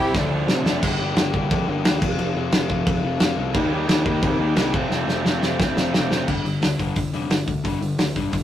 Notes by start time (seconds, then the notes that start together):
Already playing: C2 C4 E4 G4 G5
0.00 C3 G3
0.14 D2 D3 F3 A3 D4, kick, snare
0.29 D2
0.47 C3, snare
0.64 F1 F3 A3 D4, snare
0.69 D3
0.83 G1 G2 D3 G3 A#3 D4 G4, kick, crash
1.01 G2 D3 G3 A#3 D4 G4
1.15 G1 G2 D3 G3 A#3, snare, crash
1.19 D4 G4
1.34 G1 G2 D3 G3 A#3 D4 G4, kick
1.50 F2 G2 D3 G3 A#3 D4 G4, kick, crash
1.67 G1 G2 D3 G3 A#3 D4 G4
1.84 D#2 G2 D3 G3 A#3 D4 G4, snare, crash
2.02 F1 F3 A3 C4 F4, kick, crash
2.18 F1 F3 A3 C4 F4, crash
2.35 F1 F3 A3 C4 F4
2.52 F1 F3 A3 C4 F4, snare, crash
2.69 F1 F3 A3 C4 F4, kick
2.86 F1 F3 A3 C4 F4, kick, crash
3.03 F1 F3 A3 C4 F4
3.20 F1 F3 A3 C4 F4, snare, crash
3.37 C2 F3 A3 C4 F4
3.54 D#2 D#3 G3 A#3 D#4 G4, kick, crash
3.71 D#3 G3 A#3 D#4 G4
3.88 D#2 D#3 G3 A#3 D#4 G4, snare, crash
4.05 D#2 D#3 G3 A#3 D#4 G4, kick
4.21 C3 D#3 G3 A#3 D#4 G4, kick, crash
4.38 D#2 D#3 G3 A#3 D#4 G4
4.54 C2 D#3 G3 A#3 D#4 G4, snare, crash
4.73 F1 F2 C3 F3 A3 C4 F4, kick
4.90 F1 F2 C3 F3 A3 C4 F4, snare
5.06 F1 F2 C3 F3 A3 C4 F4, snare
5.24 F1 F2 C3 F3 A3 C4 F4, snare
5.41 F1 F2 C3 F3 A3 C4 F4, snare
5.58 F1 F2 C3 F3 A3 C4 F4, kick, snare
5.75 F1 F2 C3 F3 A3 C4 F4, snare
5.93 F1 F2 C3 F3 A3 C4 F4, snare
6.09 F1 F2 C3 F3 A3 C4 F4, snare
6.27 G1 G2 D3 G3, kick, crash
6.45 G1 G2 D3, open hi-hat
6.62 D2 G2 D3, snare, open hi-hat
6.78 G1 G2 D3 G3, kick, open hi-hat
6.96 G1 G2 D3, kick, open hi-hat
7.13 F1 G2 D3 G3, open hi-hat
7.30 G1 G2 D3, snare, open hi-hat
7.47 D2 G2 D3, kick, open hi-hat
7.64 G1 G2 D3 G3, kick, open hi-hat
7.81 G1 G2 D3, open hi-hat
7.98 D2 G2 D3, snare, open hi-hat
8.15 G1 G2 D3 G3, kick, open hi-hat
8.33 G1 G2 D3, kick, open hi-hat